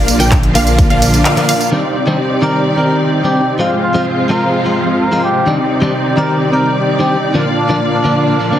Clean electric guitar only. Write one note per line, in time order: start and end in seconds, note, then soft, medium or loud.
0.19 0.30 D3 medium
0.19 0.30 F3 medium
0.19 0.30 A#3 medium
0.19 0.30 D4 medium
0.54 0.87 D3 medium
0.54 0.87 F3 medium
0.54 0.88 A#3 medium
0.54 0.88 D4 medium
0.90 1.34 D3 medium
0.90 1.34 F3 medium
0.90 1.34 A#3 medium
0.90 1.35 D4 medium
1.37 1.53 D3 loud
1.37 1.53 F3 medium
1.37 1.53 A#3 medium
1.37 1.53 D4 loud
1.72 1.82 D#3 medium
1.72 1.82 G3 medium
1.72 1.82 C4 medium
1.72 1.83 D4 medium
2.07 2.17 D#3 medium
2.07 2.17 G3 medium
2.07 2.18 C4 medium
2.07 2.18 D4 medium
2.42 2.75 D#3 medium
2.42 2.75 G3 medium
2.42 2.75 C4 medium
2.42 2.75 D5 medium
2.77 3.21 D#3 medium
2.77 3.22 G3 medium
2.77 3.22 C4 medium
2.77 3.22 D5 medium
3.24 3.40 D#3 medium
3.24 3.40 G3 medium
3.24 3.41 C4 medium
3.24 3.41 D4 medium
3.59 3.69 F3 medium
3.59 3.70 G#3 medium
3.59 3.70 C4 medium
3.59 3.70 F4 medium
3.94 4.05 F3 medium
3.94 4.05 G#3 medium
3.94 4.05 C4 medium
3.94 4.05 F4 medium
4.29 4.62 F3 medium
4.29 4.62 G#3 medium
4.29 4.63 C4 medium
4.29 4.63 F4 medium
4.64 5.09 F3 medium
4.64 5.09 G#3 soft
4.64 5.09 C4 medium
4.64 5.10 F4 medium
5.11 5.28 F3 medium
5.11 5.28 G#3 medium
5.11 5.28 C4 medium
5.11 5.28 F4 loud
5.46 5.57 D#3 medium
5.46 5.57 G3 medium
5.46 5.57 C4 medium
5.46 5.58 D4 medium
5.82 5.92 D#3 medium
5.82 5.92 G3 medium
5.82 5.92 C4 medium
5.82 5.93 D4 medium
6.17 6.50 D#3 medium
6.17 6.50 G3 medium
6.17 6.50 C4 medium
6.17 6.50 D5 medium
6.52 6.96 D#3 medium
6.52 6.97 G3 soft
6.52 6.97 C4 medium
6.52 6.97 D5 medium
6.99 7.15 D#3 medium
6.99 7.16 G3 medium
6.99 7.16 C4 medium
6.99 7.16 D4 loud
7.34 7.44 D3 medium
7.34 7.45 F3 medium
7.34 7.45 A#3 medium
7.34 7.45 D4 medium
7.69 7.80 D3 medium
7.69 7.80 F3 medium
7.69 7.80 A#3 medium
7.69 7.80 D4 medium
8.04 8.37 D3 medium
8.04 8.37 F3 medium
8.04 8.38 A#3 medium
8.04 8.38 D4 medium
8.40 8.49 D3 medium
8.40 8.50 F3 medium
8.40 8.50 A#3 medium
8.40 8.50 D4 medium
8.51 8.59 D3 medium
8.51 8.59 F3 medium
8.51 8.59 A#3 medium
8.51 8.59 C4 medium